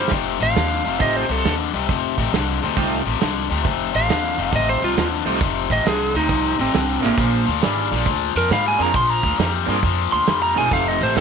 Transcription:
Already playing: overdriven electric guitar G3, lead electric guitar C5
0.08 upright bass F1, overdriven electric guitar F2, kick, snare, closed hi-hat
0.12 overdriven electric guitar C3
0.40 upright bass A1, overdriven electric guitar F2 C3, lead electric guitar F5, closed hi-hat
0.55 upright bass D#2, overdriven electric guitar F2 D3, snare, closed hi-hat
0.84 upright bass F1, overdriven electric guitar F2 C3, closed hi-hat
0.99 upright bass A1, overdriven electric guitar F2 C3, tonewheel organ A3 C4 D#4 F4 G4, lead electric guitar D#5, kick, closed hi-hat
1.17 lead electric guitar C5
1.28 upright bass C2, overdriven electric guitar F2 C3, lead electric guitar A4, closed hi-hat
1.44 upright bass D#2, overdriven electric guitar F2 D3, snare, closed hi-hat
1.73 upright bass C2, overdriven electric guitar F2 C3, closed hi-hat
1.88 upright bass F1, overdriven electric guitar F2 C3, kick, closed hi-hat
2.18 upright bass A1, overdriven electric guitar F2 C3, kick, closed hi-hat
2.33 upright bass C2, overdriven electric guitar F2 D3, snare, closed hi-hat
2.62 upright bass D2, overdriven electric guitar F2 C3, snare, closed hi-hat
2.76 upright bass C2, overdriven electric guitar F2 C3, tonewheel organ A3 C4 D#4 F4 G4, kick, closed hi-hat
3.05 upright bass A1, overdriven electric guitar F2 C3, closed hi-hat
3.20 upright bass C2, overdriven electric guitar F2 D3, snare, closed hi-hat
3.50 upright bass D2, overdriven electric guitar F2 C3, closed hi-hat
3.63 upright bass F1, overdriven electric guitar F2 C3, kick, closed hi-hat
3.92 upright bass A1, overdriven electric guitar F2 C3, lead electric guitar F5, closed hi-hat
4.08 upright bass D#2, overdriven electric guitar F2 D3, snare, closed hi-hat
4.37 upright bass F1, overdriven electric guitar F2 C3, closed hi-hat
4.52 upright bass A1, overdriven electric guitar F2 C3, lead electric guitar D#5, kick, closed hi-hat
4.69 lead electric guitar C5
4.81 upright bass C2, overdriven electric guitar F2 C3, lead electric guitar F4, closed hi-hat
4.96 upright bass D#2, overdriven electric guitar F2 D3, snare, closed hi-hat
5.25 upright bass C2, overdriven electric guitar F2 C3, tonewheel organ A3 C4 D#4 F4 G4, closed hi-hat
5.41 upright bass F1, overdriven electric guitar F2 C3, kick, closed hi-hat
5.70 upright bass A1, overdriven electric guitar F2 C3, lead electric guitar D#5, kick, closed hi-hat
5.85 upright bass C2, overdriven electric guitar F2 D3, lead electric guitar G#4, snare, closed hi-hat
6.14 upright bass D2, overdriven electric guitar F2 C3, lead electric guitar D#4, closed hi-hat
6.29 upright bass C2, overdriven electric guitar F2 C3, kick, closed hi-hat
6.58 upright bass A1, overdriven electric guitar F2 C3, lead electric guitar C4, closed hi-hat
6.73 upright bass C2, overdriven electric guitar F2 D3, snare, closed hi-hat
7.01 upright bass A1, overdriven electric guitar F2 C3, tonewheel organ A#3 C4 D4 F4 G#4, closed hi-hat
7.06 lead electric guitar A#3
7.17 upright bass A#1, overdriven electric guitar A#2 F3, saxophone section D4 G#4 C5, kick, closed hi-hat
7.46 upright bass D2, overdriven electric guitar A#2 F3, closed hi-hat
7.61 upright bass G#1, overdriven electric guitar A#2 G3, saxophone section D4 G#4 D5, snare, closed hi-hat
7.91 upright bass A#1, overdriven electric guitar A#2 F3, snare, closed hi-hat
8.06 upright bass D2, overdriven electric guitar A#2 F3, kick, closed hi-hat
8.35 upright bass F2, overdriven electric guitar A#2 F3, lead electric guitar A#4, closed hi-hat
8.50 upright bass G#2, overdriven electric guitar A#2 G3, lead electric guitar F5, snare, closed hi-hat
8.68 lead electric guitar G#5
8.78 upright bass F2, overdriven electric guitar A#2 F3, tonewheel organ A#3 C4 D4 F4 G#4, closed hi-hat
8.82 lead electric guitar A#5
8.94 upright bass A#1, overdriven electric guitar A#2 F3, lead electric guitar C6, kick, closed hi-hat
9.10 lead electric guitar A#5
9.23 upright bass D2, overdriven electric guitar A#2 F3, kick, closed hi-hat
9.38 upright bass F2, overdriven electric guitar A#2 G3, snare, closed hi-hat
9.65 upright bass G2, overdriven electric guitar A#2 F3, tonewheel organ A#3 C4 D4 F4 G#4, closed hi-hat
9.83 upright bass F2, overdriven electric guitar A#2 F3, kick, closed hi-hat
10.12 upright bass D2, overdriven electric guitar A#2 F3, lead electric guitar C6, closed hi-hat
10.27 upright bass F2, overdriven electric guitar A#2 G3, snare, closed hi-hat
10.42 lead electric guitar A#5
10.55 upright bass E1, overdriven electric guitar A#2 F3, tonewheel organ A3 C4 D#4 F4 G4, lead electric guitar G#5, closed hi-hat
10.70 upright bass F1, overdriven electric guitar F2 C3, saxophone section D#4 G4 A4, lead electric guitar F5, kick, closed hi-hat
10.88 lead electric guitar D#5
11.00 upright bass A1, overdriven electric guitar F2 C3, lead electric guitar C5, closed hi-hat
11.15 upright bass D#2, overdriven electric guitar F2 D3, saxophone section D#4 G4 C5, snare, closed hi-hat

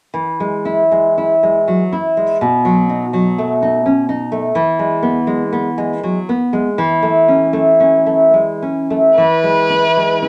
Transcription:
0.14 nylon-string guitar E3
0.40 nylon-string guitar G#3
0.65 nylon-string guitar E4
0.92 nylon-string guitar G#3
1.18 nylon-string guitar E4
1.43 nylon-string guitar G#3
1.68 nylon-string guitar F#3
1.92 nylon-string guitar E4
2.17 nylon-string guitar G#3
2.41 nylon-string guitar B2
2.65 nylon-string guitar F#3
2.89 nylon-string guitar D#4
3.13 nylon-string guitar F#3
3.38 nylon-string guitar A3
3.62 nylon-string guitar D#4
3.86 nylon-string guitar C#4
4.09 nylon-string guitar D#4
4.32 nylon-string guitar A3
4.55 nylon-string guitar E3
4.79 nylon-string guitar G#3
5.03 nylon-string guitar B3
5.27 nylon-string guitar G#3
5.53 nylon-string guitar B3
5.78 nylon-string guitar G#3
6.03 nylon-string guitar F#3
6.29 nylon-string guitar B3
6.53 nylon-string guitar G#3
6.78 nylon-string guitar E3
7.03 nylon-string guitar A3
7.28 nylon-string guitar C#4
7.53 nylon-string guitar A3
7.80 nylon-string guitar C#4
8.06 nylon-string guitar A3
8.34 nylon-string guitar G#3
8.62 nylon-string guitar C#4
8.90 nylon-string guitar A3
9.17 nylon-string guitar E3, violin B4
9.44 nylon-string guitar G#3
9.70 nylon-string guitar E4
9.97 nylon-string guitar G#3
10.22 nylon-string guitar E4

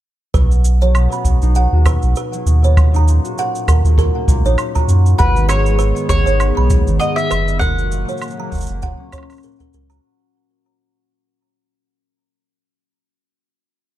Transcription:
0.34 sub bass B1, harp B2, kalimba B4, kick, cabasa
0.51 cabasa
0.65 cabasa
0.81 harp F#3, kalimba C#5, cabasa
0.95 harp B2, cabasa, low woodblock
1.12 harp B3, kalimba B5, cabasa
1.25 sub bass B1, harp B2, kick, cabasa
1.42 sub bass B1, harp D#4, cabasa
1.55 harp B2, kalimba F#5, cabasa
1.72 sub bass D#2, harp F#4
1.86 harp B2, kalimba B4, kick, cabasa, low woodblock
2.02 sub bass B1, cabasa
2.16 kalimba B4, cabasa
2.33 harp F#3, cabasa
2.46 sub bass D#2, harp B2, cabasa
2.64 harp B3, kalimba C#5, cabasa
2.77 harp A#2, kick, cabasa, low woodblock
2.94 harp D#4, kalimba A#5, cabasa
3.08 harp A#2, cabasa
3.24 harp F#4, cabasa
3.37 harp A#2, kalimba F#5, cabasa
3.55 cabasa
3.68 sub bass D#2, kalimba A#4, kick, cabasa, low woodblock
3.84 sub bass D#2, harp F#3, cabasa
3.98 harp A#2, kalimba A#4, kick, cabasa
4.15 harp A#3
4.28 sub bass C#2, harp A#2, kick, cabasa
4.45 sub bass A#1, harp D#4, kalimba C#5, cabasa
4.58 harp A#2, cabasa, low woodblock
4.75 harp F#4, kalimba A#5, kick, cabasa
4.88 sub bass F#2, harp A#2, cabasa
5.06 cabasa
5.18 sub bass G#1, analog synth pad D#3 G#3 B3, mandolin B4, kalimba F#5, kick, cabasa
5.36 harp D#3, cabasa
5.49 harp G#2, kalimba B4, mandolin C#5, cabasa, low woodblock
5.66 harp G#3, cabasa
5.79 harp G#2, kalimba B4, cabasa
5.96 harp B3, cabasa
6.09 sub bass G#1, harp G#2, mandolin C#5, kick, cabasa
6.26 sub bass G#1, harp D#4, kalimba C#5, cabasa
6.40 harp G#2, cabasa, low woodblock
6.57 sub bass B1, kalimba B5
6.70 kick, cabasa
6.87 sub bass G#1, harp D#3, cabasa
7.00 harp G#2, mandolin D#5, kalimba F#5, cabasa
7.16 harp G#3, mandolin E5, cabasa
7.31 sub bass F#1, harp G#2, kalimba B4, cabasa, low woodblock
7.48 harp B3, cabasa
7.59 harp A#2, analog synth pad C#3 F#3 A#3, kalimba A#4, mandolin F#5, kick, cabasa
7.78 harp F#4, cabasa
7.92 harp A#2, cabasa
8.09 kalimba C#5, cabasa
8.17 cabasa
8.22 cabasa, low woodblock
8.28 cabasa
8.30 cabasa
8.40 harp F#3, kalimba A#5
8.52 sub bass F#1, harp A#2, kick, cabasa
8.55 cabasa
8.58 cabasa
8.61 cabasa
8.63 cabasa
8.66 cabasa
8.69 sub bass F#1, harp A#3, cabasa
8.82 harp A#2, kalimba F#5, kick, cabasa
9.00 harp C#4
9.13 harp A#3, kalimba C#5, kick, cabasa, low woodblock
9.18 low woodblock
9.23 low woodblock
9.30 harp A#4, cabasa, low woodblock
9.33 cabasa, low woodblock
9.36 cabasa, low woodblock
9.40 cabasa
9.43 harp A#2, kalimba A#4, cabasa
9.52 cabasa
9.56 cabasa
9.60 kalimba A#4, kick, cabasa
9.73 sub bass C#2, kalimba A#4, cabasa
9.90 harp F#4, kalimba A#5, cabasa

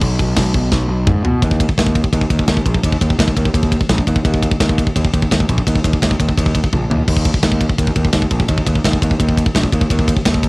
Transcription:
0.01 picked electric bass B1, kick, crash
0.19 kick, crash
0.36 picked electric bass B1, kick, snare, crash
0.54 picked electric bass B1, kick, crash
0.72 picked electric bass B1, kick, snare
0.88 picked electric bass B1
1.07 picked electric bass G#2, kick, mid tom
1.24 picked electric bass B2, floor tom
1.42 picked electric bass D#2, kick, ride
1.51 kick
1.60 kick, ride
1.69 kick
1.78 picked electric bass D#2, kick, snare, ride
1.87 kick
1.95 kick, ride
2.04 kick
2.13 picked electric bass D#2, kick, ride
2.21 kick
2.30 picked electric bass D#2, kick, ride
2.39 kick
2.48 picked electric bass D#2, kick, snare, ride
2.57 kick
2.66 picked electric bass A#1, kick, ride
2.74 kick
2.83 picked electric bass D#2, kick, ride
2.92 kick
3.01 picked electric bass D#2, kick, ride
3.10 kick
3.19 picked electric bass D#2, kick, snare, ride
3.28 kick
3.37 picked electric bass D#2, kick, ride
3.45 kick
3.54 picked electric bass D#2, kick, ride
3.63 kick
3.72 kick, ride
3.81 kick
3.89 picked electric bass A#1, kick, snare, ride
3.98 kick
4.07 picked electric bass D#2, kick, ride
4.16 kick
4.25 picked electric bass D#2, kick, ride
4.34 kick
4.43 kick, ride
4.51 kick
4.60 picked electric bass D#2, kick, snare, ride
4.69 kick
4.78 kick, ride
4.87 kick
4.96 picked electric bass D#2, kick, ride
5.05 kick
5.13 picked electric bass D#2, kick, ride
5.22 kick
5.31 picked electric bass D#2, kick, snare, ride
5.40 kick
5.49 picked electric bass A#1, kick, ride
5.58 kick
5.67 picked electric bass D#2, kick, ride
5.76 kick
5.84 picked electric bass D#2, kick, ride
5.93 kick
6.02 picked electric bass D#2, kick, snare, ride
6.11 kick
6.20 picked electric bass D#2, kick, ride
6.29 kick
6.38 picked electric bass D#2, kick, ride
6.46 kick
6.55 kick, ride
6.64 kick
6.73 picked electric bass A#1, kick, high tom
6.90 picked electric bass D#2, floor tom
7.08 picked electric bass D#2, kick, crash
7.17 kick
7.25 kick, ride
7.34 kick
7.43 picked electric bass D#2, kick, snare, ride
7.52 kick
7.61 kick, ride
7.69 kick
7.78 picked electric bass D#2, kick, ride
7.87 kick
7.96 picked electric bass D#2, kick, ride
8.05 kick
8.13 picked electric bass D#2, kick, snare, ride
8.22 kick
8.31 picked electric bass A#1, kick, ride
8.40 kick
8.48 picked electric bass D#2, kick, ride
8.58 kick
8.66 picked electric bass D#2, kick, ride
8.75 kick
8.84 picked electric bass D#2, kick, snare, ride
8.93 kick
9.02 picked electric bass D#2, kick, ride
9.11 kick
9.20 picked electric bass D#2, kick, ride
9.29 kick
9.37 kick, ride
9.46 kick
9.55 picked electric bass A#1, kick, snare, ride
9.63 kick
9.72 picked electric bass D#2, kick, ride
9.81 kick
9.90 picked electric bass D#2, kick, ride
9.99 kick
10.08 kick, ride
10.16 kick
10.25 picked electric bass D#2, kick, snare, ride
10.34 kick
10.43 kick, ride

